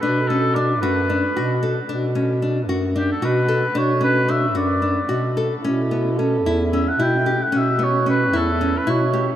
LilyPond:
<<
  \new Staff \with { instrumentName = "Oboe" } { \time 7/8 \key b \minor \tempo 4 = 112 b'8 a'8 d''8 b'4. r8 | r2 g'16 a'16 b'4 | cis''8 b'8 e''8 d''4. r8 | r2 e''16 fis''16 g''8. fis''16 |
e''8 cis''8 b'8 a'8. b'16 cis''8. r16 | }
  \new Staff \with { instrumentName = "French horn" } { \time 7/8 \key b \minor r2. r8 | r2. r8 | r2. r8 | e'4 a'8. r4. r16 |
r2. r8 | }
  \new Staff \with { instrumentName = "Nylon-string guitar" } { \time 7/8 \key b \minor d'8 cis'8 d'8 fis'8 d'8 fis'8 a'8 | d'8 cis'8 d'8 fis'8 d'8 fis'8 a'8 | d'8 cis'8 d'8 fis'8 d'8 fis'8 a'8 | cis'8 b8 cis'8 e'8 cis'8 e'8 g'8 |
cis'8 b8 cis'8 e'8 cis'8 e'8 g'8 | }
  \new Staff \with { instrumentName = "Bass clarinet" } { \clef bass \time 7/8 \key b \minor b,4. fis,4 b,4 | b,4. fis,4 b,4 | b,4. fis,4 b,4 | b,4. e,4 b,4 |
b,4. e,4 b,4 | }
>>